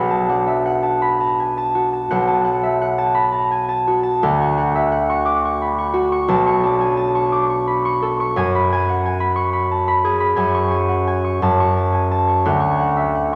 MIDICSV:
0, 0, Header, 1, 2, 480
1, 0, Start_track
1, 0, Tempo, 728155
1, 907, Tempo, 705053
1, 1391, Time_signature, 6, 3, 24, 8
1, 3307, Tempo, 688863
1, 5227, Tempo, 674157
1, 7147, Tempo, 696864
1, 9214, End_track
2, 0, Start_track
2, 0, Title_t, "Harp"
2, 0, Program_c, 0, 46
2, 0, Note_on_c, 0, 35, 66
2, 0, Note_on_c, 0, 62, 41
2, 0, Note_on_c, 0, 78, 58
2, 0, Note_on_c, 0, 83, 44
2, 0, Note_on_c, 0, 86, 52
2, 66, Note_on_c, 0, 81, 52
2, 184, Note_off_c, 0, 78, 0
2, 186, Note_off_c, 0, 62, 0
2, 191, Note_on_c, 0, 62, 43
2, 194, Note_on_c, 0, 78, 49
2, 311, Note_on_c, 0, 76, 44
2, 424, Note_off_c, 0, 78, 0
2, 432, Note_on_c, 0, 78, 55
2, 515, Note_off_c, 0, 76, 0
2, 537, Note_off_c, 0, 81, 0
2, 545, Note_on_c, 0, 81, 50
2, 664, Note_off_c, 0, 83, 0
2, 671, Note_on_c, 0, 83, 61
2, 786, Note_off_c, 0, 81, 0
2, 794, Note_on_c, 0, 81, 46
2, 802, Note_off_c, 0, 86, 0
2, 872, Note_off_c, 0, 83, 0
2, 920, Note_on_c, 0, 80, 43
2, 1035, Note_off_c, 0, 81, 0
2, 1043, Note_on_c, 0, 81, 55
2, 1120, Note_off_c, 0, 80, 0
2, 1162, Note_on_c, 0, 66, 51
2, 1275, Note_off_c, 0, 81, 0
2, 1283, Note_on_c, 0, 81, 47
2, 1396, Note_off_c, 0, 78, 0
2, 1399, Note_off_c, 0, 35, 0
2, 1404, Note_on_c, 0, 78, 59
2, 1407, Note_on_c, 0, 35, 58
2, 1413, Note_off_c, 0, 62, 0
2, 1511, Note_off_c, 0, 81, 0
2, 1519, Note_on_c, 0, 81, 55
2, 1628, Note_off_c, 0, 78, 0
2, 1636, Note_on_c, 0, 78, 48
2, 1762, Note_on_c, 0, 76, 46
2, 1879, Note_off_c, 0, 78, 0
2, 1887, Note_on_c, 0, 78, 52
2, 1956, Note_off_c, 0, 76, 0
2, 1992, Note_off_c, 0, 81, 0
2, 2001, Note_on_c, 0, 81, 55
2, 2112, Note_on_c, 0, 83, 63
2, 2224, Note_off_c, 0, 81, 0
2, 2232, Note_on_c, 0, 81, 55
2, 2310, Note_off_c, 0, 83, 0
2, 2362, Note_on_c, 0, 80, 49
2, 2472, Note_off_c, 0, 81, 0
2, 2480, Note_on_c, 0, 81, 61
2, 2558, Note_off_c, 0, 80, 0
2, 2601, Note_off_c, 0, 66, 0
2, 2609, Note_on_c, 0, 66, 57
2, 2707, Note_off_c, 0, 81, 0
2, 2715, Note_on_c, 0, 81, 58
2, 2845, Note_off_c, 0, 78, 0
2, 2849, Note_on_c, 0, 38, 70
2, 2853, Note_on_c, 0, 78, 57
2, 2856, Note_off_c, 0, 35, 0
2, 2974, Note_on_c, 0, 85, 55
2, 3077, Note_off_c, 0, 78, 0
2, 3086, Note_on_c, 0, 78, 58
2, 3206, Note_on_c, 0, 76, 49
2, 3311, Note_off_c, 0, 78, 0
2, 3320, Note_on_c, 0, 78, 63
2, 3398, Note_off_c, 0, 76, 0
2, 3434, Note_off_c, 0, 85, 0
2, 3443, Note_on_c, 0, 85, 59
2, 3552, Note_on_c, 0, 86, 72
2, 3682, Note_off_c, 0, 85, 0
2, 3690, Note_on_c, 0, 85, 55
2, 3749, Note_off_c, 0, 86, 0
2, 3806, Note_on_c, 0, 83, 44
2, 3913, Note_off_c, 0, 85, 0
2, 3922, Note_on_c, 0, 85, 59
2, 3996, Note_off_c, 0, 83, 0
2, 4020, Note_off_c, 0, 66, 0
2, 4028, Note_on_c, 0, 66, 65
2, 4149, Note_off_c, 0, 85, 0
2, 4157, Note_on_c, 0, 85, 65
2, 4266, Note_off_c, 0, 81, 0
2, 4270, Note_on_c, 0, 35, 75
2, 4276, Note_on_c, 0, 81, 70
2, 4289, Note_off_c, 0, 38, 0
2, 4389, Note_off_c, 0, 85, 0
2, 4398, Note_on_c, 0, 85, 63
2, 4508, Note_off_c, 0, 81, 0
2, 4513, Note_on_c, 0, 62, 53
2, 4519, Note_on_c, 0, 81, 62
2, 4634, Note_on_c, 0, 80, 51
2, 4740, Note_off_c, 0, 81, 0
2, 4748, Note_on_c, 0, 81, 61
2, 4835, Note_off_c, 0, 80, 0
2, 4866, Note_off_c, 0, 85, 0
2, 4875, Note_on_c, 0, 85, 60
2, 4994, Note_on_c, 0, 86, 69
2, 5108, Note_off_c, 0, 85, 0
2, 5116, Note_on_c, 0, 85, 57
2, 5195, Note_off_c, 0, 86, 0
2, 5239, Note_on_c, 0, 83, 50
2, 5357, Note_off_c, 0, 85, 0
2, 5366, Note_on_c, 0, 85, 65
2, 5438, Note_off_c, 0, 83, 0
2, 5488, Note_on_c, 0, 69, 56
2, 5606, Note_off_c, 0, 85, 0
2, 5614, Note_on_c, 0, 85, 61
2, 5728, Note_on_c, 0, 42, 74
2, 5730, Note_off_c, 0, 81, 0
2, 5734, Note_off_c, 0, 35, 0
2, 5734, Note_on_c, 0, 80, 67
2, 5735, Note_off_c, 0, 62, 0
2, 5738, Note_off_c, 0, 69, 0
2, 5863, Note_on_c, 0, 83, 70
2, 5979, Note_off_c, 0, 80, 0
2, 5987, Note_on_c, 0, 80, 64
2, 6055, Note_off_c, 0, 78, 0
2, 6107, Note_on_c, 0, 78, 54
2, 6214, Note_off_c, 0, 80, 0
2, 6222, Note_on_c, 0, 80, 60
2, 6290, Note_off_c, 0, 78, 0
2, 6319, Note_off_c, 0, 83, 0
2, 6327, Note_on_c, 0, 83, 60
2, 6430, Note_off_c, 0, 85, 0
2, 6439, Note_on_c, 0, 85, 65
2, 6553, Note_off_c, 0, 83, 0
2, 6561, Note_on_c, 0, 83, 57
2, 6636, Note_off_c, 0, 85, 0
2, 6691, Note_on_c, 0, 81, 46
2, 6779, Note_off_c, 0, 66, 0
2, 6800, Note_off_c, 0, 83, 0
2, 6809, Note_on_c, 0, 83, 62
2, 6882, Note_off_c, 0, 81, 0
2, 6928, Note_on_c, 0, 68, 59
2, 7030, Note_off_c, 0, 83, 0
2, 7039, Note_on_c, 0, 83, 64
2, 7145, Note_off_c, 0, 80, 0
2, 7148, Note_off_c, 0, 42, 0
2, 7153, Note_on_c, 0, 80, 63
2, 7156, Note_on_c, 0, 42, 70
2, 7279, Note_on_c, 0, 85, 88
2, 7381, Note_off_c, 0, 80, 0
2, 7389, Note_on_c, 0, 80, 55
2, 7514, Note_on_c, 0, 78, 46
2, 7635, Note_off_c, 0, 80, 0
2, 7643, Note_on_c, 0, 80, 55
2, 7714, Note_off_c, 0, 78, 0
2, 7753, Note_off_c, 0, 85, 0
2, 7762, Note_on_c, 0, 85, 53
2, 7874, Note_off_c, 0, 42, 0
2, 7882, Note_on_c, 0, 42, 75
2, 7887, Note_on_c, 0, 81, 65
2, 7896, Note_off_c, 0, 68, 0
2, 7896, Note_off_c, 0, 80, 0
2, 7998, Note_off_c, 0, 85, 0
2, 8006, Note_on_c, 0, 85, 64
2, 8114, Note_off_c, 0, 81, 0
2, 8122, Note_on_c, 0, 81, 53
2, 8228, Note_on_c, 0, 80, 48
2, 8352, Note_off_c, 0, 81, 0
2, 8360, Note_on_c, 0, 81, 59
2, 8426, Note_off_c, 0, 80, 0
2, 8466, Note_off_c, 0, 85, 0
2, 8475, Note_on_c, 0, 85, 54
2, 8594, Note_on_c, 0, 38, 62
2, 8600, Note_on_c, 0, 78, 64
2, 8603, Note_off_c, 0, 83, 0
2, 8605, Note_off_c, 0, 42, 0
2, 8686, Note_off_c, 0, 85, 0
2, 8695, Note_on_c, 0, 85, 72
2, 8818, Note_off_c, 0, 78, 0
2, 8826, Note_on_c, 0, 78, 53
2, 8947, Note_on_c, 0, 76, 45
2, 9066, Note_off_c, 0, 78, 0
2, 9075, Note_on_c, 0, 78, 49
2, 9152, Note_off_c, 0, 76, 0
2, 9189, Note_off_c, 0, 85, 0
2, 9214, Note_off_c, 0, 38, 0
2, 9214, Note_off_c, 0, 78, 0
2, 9214, Note_off_c, 0, 81, 0
2, 9214, End_track
0, 0, End_of_file